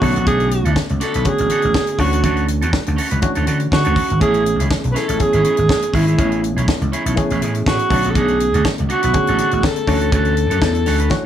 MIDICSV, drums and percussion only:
0, 0, Header, 1, 2, 480
1, 0, Start_track
1, 0, Key_signature, 3, "major"
1, 0, Tempo, 493016
1, 258, Time_signature, 4, 2, 24, 8
1, 10959, End_track
2, 0, Start_track
2, 0, Title_t, "Drums"
2, 17, Note_on_c, 9, 36, 78
2, 26, Note_on_c, 9, 46, 61
2, 114, Note_off_c, 9, 36, 0
2, 124, Note_off_c, 9, 46, 0
2, 155, Note_on_c, 9, 42, 42
2, 252, Note_off_c, 9, 42, 0
2, 261, Note_on_c, 9, 36, 105
2, 261, Note_on_c, 9, 42, 71
2, 358, Note_off_c, 9, 36, 0
2, 358, Note_off_c, 9, 42, 0
2, 388, Note_on_c, 9, 42, 34
2, 485, Note_off_c, 9, 42, 0
2, 500, Note_on_c, 9, 42, 56
2, 597, Note_off_c, 9, 42, 0
2, 636, Note_on_c, 9, 42, 42
2, 733, Note_off_c, 9, 42, 0
2, 740, Note_on_c, 9, 36, 111
2, 743, Note_on_c, 9, 38, 110
2, 837, Note_off_c, 9, 36, 0
2, 840, Note_off_c, 9, 38, 0
2, 869, Note_on_c, 9, 42, 40
2, 966, Note_off_c, 9, 42, 0
2, 981, Note_on_c, 9, 42, 60
2, 987, Note_on_c, 9, 38, 26
2, 1079, Note_off_c, 9, 42, 0
2, 1084, Note_off_c, 9, 38, 0
2, 1110, Note_on_c, 9, 42, 54
2, 1208, Note_off_c, 9, 42, 0
2, 1214, Note_on_c, 9, 42, 62
2, 1222, Note_on_c, 9, 36, 89
2, 1311, Note_off_c, 9, 42, 0
2, 1319, Note_off_c, 9, 36, 0
2, 1346, Note_on_c, 9, 42, 49
2, 1443, Note_off_c, 9, 42, 0
2, 1456, Note_on_c, 9, 42, 61
2, 1553, Note_off_c, 9, 42, 0
2, 1578, Note_on_c, 9, 42, 36
2, 1675, Note_off_c, 9, 42, 0
2, 1698, Note_on_c, 9, 36, 97
2, 1705, Note_on_c, 9, 38, 110
2, 1795, Note_off_c, 9, 36, 0
2, 1802, Note_off_c, 9, 38, 0
2, 1821, Note_on_c, 9, 42, 50
2, 1918, Note_off_c, 9, 42, 0
2, 1934, Note_on_c, 9, 36, 81
2, 1940, Note_on_c, 9, 46, 62
2, 2031, Note_off_c, 9, 36, 0
2, 2037, Note_off_c, 9, 46, 0
2, 2071, Note_on_c, 9, 42, 44
2, 2168, Note_off_c, 9, 42, 0
2, 2178, Note_on_c, 9, 36, 106
2, 2178, Note_on_c, 9, 42, 73
2, 2275, Note_off_c, 9, 42, 0
2, 2276, Note_off_c, 9, 36, 0
2, 2303, Note_on_c, 9, 42, 32
2, 2401, Note_off_c, 9, 42, 0
2, 2417, Note_on_c, 9, 42, 57
2, 2514, Note_off_c, 9, 42, 0
2, 2553, Note_on_c, 9, 42, 46
2, 2650, Note_off_c, 9, 42, 0
2, 2659, Note_on_c, 9, 36, 111
2, 2663, Note_on_c, 9, 38, 100
2, 2756, Note_off_c, 9, 36, 0
2, 2760, Note_off_c, 9, 38, 0
2, 2789, Note_on_c, 9, 42, 42
2, 2887, Note_off_c, 9, 42, 0
2, 2902, Note_on_c, 9, 46, 58
2, 3000, Note_off_c, 9, 46, 0
2, 3029, Note_on_c, 9, 42, 57
2, 3126, Note_off_c, 9, 42, 0
2, 3135, Note_on_c, 9, 42, 67
2, 3142, Note_on_c, 9, 36, 101
2, 3232, Note_off_c, 9, 42, 0
2, 3239, Note_off_c, 9, 36, 0
2, 3263, Note_on_c, 9, 42, 45
2, 3360, Note_off_c, 9, 42, 0
2, 3377, Note_on_c, 9, 42, 63
2, 3475, Note_off_c, 9, 42, 0
2, 3502, Note_on_c, 9, 42, 37
2, 3599, Note_off_c, 9, 42, 0
2, 3621, Note_on_c, 9, 36, 90
2, 3632, Note_on_c, 9, 38, 108
2, 3718, Note_off_c, 9, 36, 0
2, 3729, Note_off_c, 9, 38, 0
2, 3745, Note_on_c, 9, 42, 45
2, 3842, Note_off_c, 9, 42, 0
2, 3856, Note_on_c, 9, 36, 80
2, 3864, Note_on_c, 9, 46, 58
2, 3953, Note_off_c, 9, 36, 0
2, 3961, Note_off_c, 9, 46, 0
2, 3992, Note_on_c, 9, 42, 39
2, 4090, Note_off_c, 9, 42, 0
2, 4101, Note_on_c, 9, 36, 105
2, 4102, Note_on_c, 9, 42, 70
2, 4198, Note_off_c, 9, 36, 0
2, 4200, Note_off_c, 9, 42, 0
2, 4226, Note_on_c, 9, 42, 34
2, 4324, Note_off_c, 9, 42, 0
2, 4343, Note_on_c, 9, 42, 53
2, 4441, Note_off_c, 9, 42, 0
2, 4477, Note_on_c, 9, 42, 49
2, 4575, Note_off_c, 9, 42, 0
2, 4581, Note_on_c, 9, 36, 117
2, 4586, Note_on_c, 9, 38, 104
2, 4679, Note_off_c, 9, 36, 0
2, 4683, Note_off_c, 9, 38, 0
2, 4711, Note_on_c, 9, 42, 42
2, 4809, Note_off_c, 9, 42, 0
2, 4827, Note_on_c, 9, 42, 60
2, 4832, Note_on_c, 9, 38, 30
2, 4924, Note_off_c, 9, 42, 0
2, 4930, Note_off_c, 9, 38, 0
2, 4953, Note_on_c, 9, 42, 59
2, 5051, Note_off_c, 9, 42, 0
2, 5058, Note_on_c, 9, 42, 64
2, 5065, Note_on_c, 9, 36, 89
2, 5156, Note_off_c, 9, 42, 0
2, 5163, Note_off_c, 9, 36, 0
2, 5191, Note_on_c, 9, 42, 43
2, 5288, Note_off_c, 9, 42, 0
2, 5302, Note_on_c, 9, 42, 61
2, 5399, Note_off_c, 9, 42, 0
2, 5423, Note_on_c, 9, 42, 42
2, 5520, Note_off_c, 9, 42, 0
2, 5543, Note_on_c, 9, 36, 87
2, 5553, Note_on_c, 9, 38, 100
2, 5640, Note_off_c, 9, 36, 0
2, 5650, Note_off_c, 9, 38, 0
2, 5669, Note_on_c, 9, 42, 53
2, 5766, Note_off_c, 9, 42, 0
2, 5779, Note_on_c, 9, 36, 80
2, 5788, Note_on_c, 9, 46, 62
2, 5876, Note_off_c, 9, 36, 0
2, 5885, Note_off_c, 9, 46, 0
2, 5916, Note_on_c, 9, 42, 39
2, 6014, Note_off_c, 9, 42, 0
2, 6022, Note_on_c, 9, 36, 107
2, 6025, Note_on_c, 9, 42, 68
2, 6120, Note_off_c, 9, 36, 0
2, 6122, Note_off_c, 9, 42, 0
2, 6150, Note_on_c, 9, 42, 35
2, 6247, Note_off_c, 9, 42, 0
2, 6268, Note_on_c, 9, 42, 52
2, 6365, Note_off_c, 9, 42, 0
2, 6402, Note_on_c, 9, 42, 42
2, 6499, Note_off_c, 9, 42, 0
2, 6504, Note_on_c, 9, 36, 117
2, 6511, Note_on_c, 9, 38, 120
2, 6601, Note_off_c, 9, 36, 0
2, 6608, Note_off_c, 9, 38, 0
2, 6636, Note_on_c, 9, 42, 38
2, 6733, Note_off_c, 9, 42, 0
2, 6748, Note_on_c, 9, 42, 56
2, 6845, Note_off_c, 9, 42, 0
2, 6875, Note_on_c, 9, 42, 60
2, 6973, Note_off_c, 9, 42, 0
2, 6979, Note_on_c, 9, 42, 60
2, 6985, Note_on_c, 9, 36, 86
2, 7076, Note_off_c, 9, 42, 0
2, 7082, Note_off_c, 9, 36, 0
2, 7110, Note_on_c, 9, 42, 44
2, 7207, Note_off_c, 9, 42, 0
2, 7223, Note_on_c, 9, 42, 59
2, 7320, Note_off_c, 9, 42, 0
2, 7346, Note_on_c, 9, 42, 40
2, 7444, Note_off_c, 9, 42, 0
2, 7462, Note_on_c, 9, 36, 94
2, 7473, Note_on_c, 9, 38, 110
2, 7560, Note_off_c, 9, 36, 0
2, 7571, Note_off_c, 9, 38, 0
2, 7585, Note_on_c, 9, 42, 51
2, 7683, Note_off_c, 9, 42, 0
2, 7696, Note_on_c, 9, 36, 81
2, 7702, Note_on_c, 9, 46, 62
2, 7793, Note_off_c, 9, 36, 0
2, 7799, Note_off_c, 9, 46, 0
2, 7831, Note_on_c, 9, 42, 42
2, 7928, Note_off_c, 9, 42, 0
2, 7938, Note_on_c, 9, 42, 73
2, 7939, Note_on_c, 9, 36, 100
2, 8035, Note_off_c, 9, 42, 0
2, 8036, Note_off_c, 9, 36, 0
2, 8063, Note_on_c, 9, 42, 34
2, 8161, Note_off_c, 9, 42, 0
2, 8181, Note_on_c, 9, 42, 56
2, 8278, Note_off_c, 9, 42, 0
2, 8315, Note_on_c, 9, 42, 43
2, 8412, Note_off_c, 9, 42, 0
2, 8420, Note_on_c, 9, 36, 110
2, 8425, Note_on_c, 9, 38, 120
2, 8517, Note_off_c, 9, 36, 0
2, 8522, Note_off_c, 9, 38, 0
2, 8548, Note_on_c, 9, 42, 40
2, 8645, Note_off_c, 9, 42, 0
2, 8661, Note_on_c, 9, 42, 53
2, 8758, Note_off_c, 9, 42, 0
2, 8788, Note_on_c, 9, 42, 61
2, 8886, Note_off_c, 9, 42, 0
2, 8895, Note_on_c, 9, 42, 61
2, 8902, Note_on_c, 9, 36, 90
2, 8992, Note_off_c, 9, 42, 0
2, 9000, Note_off_c, 9, 36, 0
2, 9026, Note_on_c, 9, 42, 45
2, 9124, Note_off_c, 9, 42, 0
2, 9137, Note_on_c, 9, 42, 60
2, 9234, Note_off_c, 9, 42, 0
2, 9261, Note_on_c, 9, 42, 36
2, 9359, Note_off_c, 9, 42, 0
2, 9379, Note_on_c, 9, 36, 92
2, 9386, Note_on_c, 9, 38, 99
2, 9477, Note_off_c, 9, 36, 0
2, 9484, Note_off_c, 9, 38, 0
2, 9501, Note_on_c, 9, 42, 49
2, 9598, Note_off_c, 9, 42, 0
2, 9614, Note_on_c, 9, 36, 76
2, 9621, Note_on_c, 9, 46, 64
2, 9711, Note_off_c, 9, 36, 0
2, 9718, Note_off_c, 9, 46, 0
2, 9748, Note_on_c, 9, 42, 40
2, 9845, Note_off_c, 9, 42, 0
2, 9854, Note_on_c, 9, 42, 76
2, 9856, Note_on_c, 9, 36, 111
2, 9951, Note_off_c, 9, 42, 0
2, 9953, Note_off_c, 9, 36, 0
2, 9977, Note_on_c, 9, 42, 31
2, 10075, Note_off_c, 9, 42, 0
2, 10094, Note_on_c, 9, 42, 54
2, 10191, Note_off_c, 9, 42, 0
2, 10231, Note_on_c, 9, 42, 48
2, 10328, Note_off_c, 9, 42, 0
2, 10336, Note_on_c, 9, 36, 107
2, 10340, Note_on_c, 9, 38, 112
2, 10433, Note_off_c, 9, 36, 0
2, 10437, Note_off_c, 9, 38, 0
2, 10464, Note_on_c, 9, 42, 40
2, 10561, Note_off_c, 9, 42, 0
2, 10572, Note_on_c, 9, 46, 57
2, 10578, Note_on_c, 9, 38, 29
2, 10670, Note_off_c, 9, 46, 0
2, 10675, Note_off_c, 9, 38, 0
2, 10705, Note_on_c, 9, 42, 55
2, 10803, Note_off_c, 9, 42, 0
2, 10816, Note_on_c, 9, 36, 101
2, 10816, Note_on_c, 9, 38, 49
2, 10913, Note_off_c, 9, 36, 0
2, 10913, Note_off_c, 9, 38, 0
2, 10959, End_track
0, 0, End_of_file